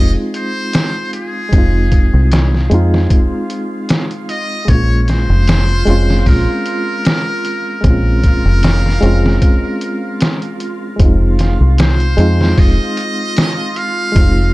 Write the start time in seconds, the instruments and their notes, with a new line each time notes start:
Already playing: fingered electric bass F1, reed electric piano G#3 C4 D#4 F4, synth texture F4, muted trumpet D#5
0.34 muted trumpet C5, closed hi-hat
0.73 snare, closed hi-hat
1.13 muted trumpet G#4, closed hi-hat
1.49 fingered electric bass F1, reed electric piano G#3 C4, kick, closed hi-hat
1.55 reed electric piano D#4 F4
1.92 kick, closed hi-hat
2.14 fingered electric bass C2
2.32 snare, closed hi-hat
2.54 snare
2.70 fingered electric bass F2, reed electric piano G#3 C4 D#4, closed hi-hat
2.74 reed electric piano F4
2.94 snare
3.10 kick, closed hi-hat
3.50 closed hi-hat
3.89 snare, closed hi-hat
4.11 closed hi-hat
4.29 muted trumpet D#5, closed hi-hat
4.65 fingered electric bass A#1, reed electric piano G#3 A#3, kick, closed hi-hat
4.69 reed electric piano C#4, muted trumpet C#5
4.74 reed electric piano F4
5.02 muted trumpet C#5
5.08 muted trumpet C5, snare, closed hi-hat
5.30 fingered electric bass F1
5.48 snare, closed hi-hat
5.69 closed hi-hat
5.86 fingered electric bass F1, reed electric piano G#3 C4 C#4, closed hi-hat
5.90 reed electric piano F4
6.10 snare
6.26 fingered electric bass A#1, muted trumpet A#4, kick, open hi-hat
6.66 closed hi-hat
7.05 snare, closed hi-hat
7.45 closed hi-hat
7.81 fingered electric bass A#1, reed electric piano G#3 C4, kick, closed hi-hat
7.85 reed electric piano C#4, muted trumpet A#4
7.90 reed electric piano F4
8.24 kick, closed hi-hat
8.45 fingered electric bass F1
8.63 snare, closed hi-hat
8.86 snare
9.01 fingered electric bass F1, reed electric piano G#3 C4 C#4, closed hi-hat
9.06 reed electric piano F4
9.26 snare
9.42 kick, closed hi-hat
9.81 closed hi-hat
10.21 snare, closed hi-hat
10.42 closed hi-hat
10.60 closed hi-hat
10.96 fingered electric bass F1, reed electric piano G#3 C4, kick, closed hi-hat
11.02 reed electric piano D#4 F4
11.39 snare, closed hi-hat
11.61 fingered electric bass C2
11.78 muted trumpet C5, snare, closed hi-hat
12.00 closed hi-hat
12.17 fingered electric bass F2, reed electric piano G#3 C4 D#4, closed hi-hat
12.21 reed electric piano F4
12.41 snare
12.58 fingered electric bass F1, muted trumpet D#5, kick, open hi-hat
12.97 closed hi-hat
13.37 snare, closed hi-hat
13.76 muted trumpet F5, closed hi-hat
14.12 fingered electric bass F1, reed electric piano G#3 C4, kick, closed hi-hat
14.18 reed electric piano D#4 F4